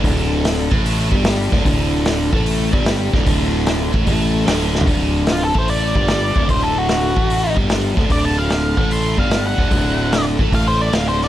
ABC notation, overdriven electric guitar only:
X:1
M:4/4
L:1/8
Q:"Swing" 1/4=149
K:Dmix
V:1 name="Overdriven electric guitar" clef=bass
[D,,D,]3 [A,,A,]2 [G,,G,]2 [D,,D,] | [D,,D,]3 [A,,A,]2 [G,,G,]2 [D,,D,] | [D,,D,]3 [A,,A,] [A,,A,]2 [D,,D,]2 | [D,,D,]3 [A,,A,]2 [G,,G,]2 [D,,D,] |
[D,,D,]3 [A,,A,]2 [G,,G,]2 [D,,D,] | [D,,D,]3 [A,,A,]2 [G,,G,]2 [D,,D,] | [D,,D,]3 [A,,A,] [A,,A,]2 [D,,D,]2 |]